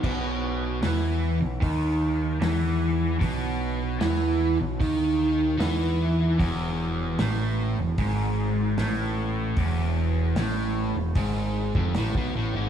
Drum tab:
CC |x---------------|----------------|----------------|----------------|
HH |----o---o---o---|o---o---o---o---|o---o---o---o---|o---o---o---o---|
SD |----o-------o---|----o-------o---|----o-------o---|----o-------o---|
BD |o-------o-------|o-------o-------|o-------o-------|o-------o--o-o--|